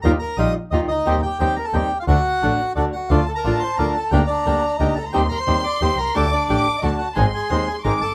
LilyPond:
<<
  \new Staff \with { instrumentName = "Violin section" } { \time 3/4 \key d \phrygian \tempo 4 = 177 r2. | r2. | r2. | a''2. |
bes''2. | c'''2. | d'''4 d'''4 a''4 | c'''2 d'''4 | }
  \new Staff \with { instrumentName = "Bandoneon" } { \time 3/4 \key d \phrygian << { bes''8 bes''8 ees'''8 r8 ees''8 ees''8~ | ees''8 g''8 g''8 bes''16 a''16 g''8. f''16 | fis''2 d''8 fis''8 | f''8 a''16 bes''8. c'''8 bes''8 a''8 |
g''8 d''4. ees''8 a''8 | g''8 bes''16 c'''8. d'''8 c'''8 bes''8 | a''8 d''4~ d''16. ees''32 d''8 fis''8 | aes''8 aes''8 c'''8 aes''8 bes''8 a''8 | } \\ { bes'8 bes'8 ees''8 r8 ees'8 ees'8~ | ees'8 g'8 g'8 bes'16 a'16 g'8. f'16 | fis'2 d'8 fis'8 | f'8 a'16 bes'8. c''8 bes'8 a'8 |
g'8 d'4. ees'8 a'8 | g'8 bes'16 c''8. d''8 c''8 bes'8 | a'8 d'4. d'8 fis'8 | aes'8 aes'8 c''8 aes'8 bes'8 a'8 | } >> }
  \new Staff \with { instrumentName = "Bandoneon" } { \time 3/4 \key d \phrygian <ees' f' g'>8 r8 <ees' f' g'>8 r8 <ees' f' g'>8 r8 | <c' ees' g'>8 r8 <c' ees' g'>8 r8 <c' ees' g'>8 r8 | <a d' fis'>8 r8 <a d' fis'>8 r8 <a d' fis'>8 r8 | <a d' f'>8 r8 <a d' f'>8 r8 <a d' f'>8 r8 |
<bes d' g'>8 r8 <bes d' g'>8 r8 <bes d' g'>8 r8 | <c' ees' g'>8 r8 <c' ees' g'>8 r8 <c' ees' g'>8 r8 | <a d' g'>8 r8 <a d' g'>8 r8 <a d' fis'>8 r8 | <aes c' ees'>8 r8 <aes c' ees'>8 r8 <aes c' ees'>8 r8 | }
  \new Staff \with { instrumentName = "Nylon-string guitar" } { \time 3/4 \key d \phrygian <ees g ees' f'>16 r8. <ees g ees' f'>8 r8 <ees g ees' f'>8 r8 | <ees g c' g'>16 r8. <ees g c' g'>8 r8 <ees g c' g'>8 r8 | <d a d' fis'>16 r8. <d a d' fis'>8 r8 <d a d' fis'>8 r8 | <d a d' f'>16 r8. <d a d' f'>8 r8 <d a d' f'>8 r8 |
<d bes d' g'>16 r8. <d bes d' g'>8 r8 <d bes d' g'>8 r8 | <ees g c' g'>16 r8. <ees g c' g'>8 r8 <ees g c' g'>8 r8 | <d a d' g'>16 r8. <d a d' g'>8 r8 <d a d' fis'>8 r8 | <ees aes c' ees' aes'>16 r8. <ees aes c' ees' aes'>8 r8 <ees aes c' ees' aes'>8 r8 | }
  \new Staff \with { instrumentName = "Double bass" } { \clef bass \time 3/4 \key d \phrygian ees,8 r8 bes,,8 r8 ees,8 cis,8 | ees,8 r8 ees,8 r8 ees,8 r8 | d,8 r8 a,,8 r8 d,8 r8 | d,8 r8 a,,8 r8 d,8 r8 |
d,8 r8 d,8 r8 d,8 cis,8 | ees,8 r8 ees,8 r8 ees,8 c,8 | d,8 r8 a,,8 r8 d,8 r8 | aes,,8 r8 ees,8 r8 aes,,8 g,,8 | }
>>